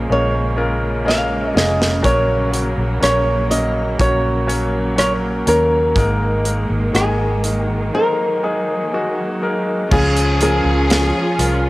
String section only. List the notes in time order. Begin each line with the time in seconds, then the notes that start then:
Already playing: C#3 G#3 A#3
2.03 F#3
3.98 F#3
5.94 D#3 G#3
7.92 F#3
9.91 F3 C#4 F4 G#4